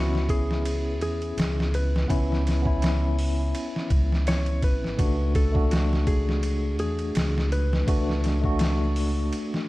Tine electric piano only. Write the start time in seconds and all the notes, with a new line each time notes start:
Already playing: B3 C#4 E4
2.08 B3 C#4 E4
2.62 B3 C#4
2.67 E4
4.97 A3 D4 F#4
5.52 A3 D4
5.56 F#4
7.87 A3 D4 F#4
8.41 A3 D4
8.45 F#4